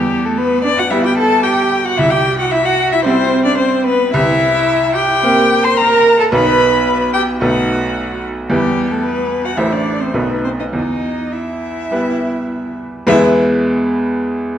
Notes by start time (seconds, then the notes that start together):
Already playing: E2 G3 G4
0.25 A3 A4
0.38 B3 B4
0.64 D4 D5
0.77 F#4 F#5
0.90 G3 B3 E4 E5
1.04 G4 G5
1.18 A4 A5
1.44 G4 G5
1.85 F#4 F#5
1.97 C2 E4 E5
2.11 G4 G5
2.38 F#4 F#5
2.51 E4 E5
2.65 F#4 F#5
2.92 E4 E5
3.05 G3 C4 E4 C5
3.45 D4 D5
3.58 C4 C5
3.86 B3 B4
4.14 C2 E4 E5
4.95 G4 G5
5.23 A#3 C4 G4
5.63 C5 C6
5.77 A#4 A#5
6.19 A4 A5
6.32 B1 B3 D#4 B4 B5
7.13 G4 G5
7.40 B1 A3 D#4 F#4 B4 F#5
8.49 E2 G3 E4 G4 B4
8.91 A3 A4
9.03 B3 B4
9.44 F#4 F#5
9.57 A1 A3 E4 C5 E5
9.72 D4 D5
10.00 C4 C5
10.14 B1 A3 B3 D#4 B4
10.44 C4 C5
10.59 D#4 D#5
10.73 E2 D#4 D#5
11.32 E4 E5
11.91 G3 B3 B4
13.07 E2 E3 G#3 B3 E4 B4 E5